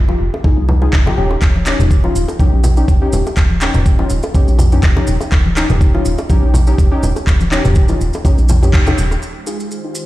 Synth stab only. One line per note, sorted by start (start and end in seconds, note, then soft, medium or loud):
0.09 0.20 D#4 medium
0.09 0.20 F4 medium
0.09 0.20 G4 medium
0.44 0.65 D#4 medium
0.44 0.65 F4 medium
0.44 0.65 G#4 loud
0.82 1.02 D#4 medium
0.82 1.02 F4 medium
0.82 1.02 G#4 medium
1.06 1.16 D#4 loud
1.06 1.16 F4 medium
1.06 1.16 G4 loud
1.17 1.64 C#4 medium
1.17 1.64 D#4 medium
1.17 1.64 G4 loud
1.66 2.01 C#4 medium
1.66 2.01 D#4 medium
1.66 2.01 G4 loud
2.04 2.16 C#4 medium
2.04 2.16 D#4 medium
2.04 2.16 F4 medium
2.40 2.60 C#4 medium
2.40 2.60 D#4 medium
2.40 2.60 G4 medium
2.77 2.97 C#4 medium
2.77 2.97 D#4 medium
2.77 2.97 G4 medium
3.02 3.13 C#4 loud
3.02 3.13 D#4 medium
3.02 3.13 G4 loud
3.62 3.96 C#4 medium
3.62 3.96 D#4 medium
3.62 3.96 G4 loud
3.99 4.11 C#4 medium
3.99 4.11 D#4 medium
3.99 4.11 F4 medium
4.35 4.55 C#4 medium
4.35 4.55 D#4 medium
4.35 4.55 G4 medium
4.72 4.92 C#4 medium
4.72 4.92 D#4 medium
4.72 4.92 G4 medium
4.96 5.08 C#4 medium
4.96 5.08 D#4 medium
4.96 5.08 G4 loud
5.56 5.91 C#4 medium
5.56 5.91 D#4 medium
5.56 5.91 G4 loud
5.94 6.06 C#4 medium
5.94 6.06 D#4 medium
5.94 6.06 F4 medium
6.30 6.50 C#4 medium
6.30 6.50 D#4 medium
6.30 6.50 G4 loud
6.67 6.87 C#4 medium
6.67 6.87 D#4 medium
6.67 6.87 G4 medium
6.91 7.03 C#4 loud
6.91 7.03 D#4 medium
6.91 7.03 G4 loud
7.52 7.86 C#4 loud
7.52 7.86 D#4 medium
7.52 7.86 G4 loud
7.89 8.01 C#4 medium
7.89 8.01 D#4 medium
7.89 8.01 F4 medium
8.25 8.45 C#4 medium
8.25 8.45 D#4 medium
8.25 8.45 G4 loud
8.62 8.82 C#4 medium
8.62 8.82 D#4 medium
8.62 8.82 G4 medium
8.87 8.98 C#4 medium
8.87 8.98 D#4 medium
8.87 8.98 G4 loud
9.47 9.81 D#4 medium
9.47 9.81 F4 medium
9.47 9.81 G#4 loud
9.84 9.96 D#4 medium
9.84 9.96 F4 medium
9.84 9.96 G4 medium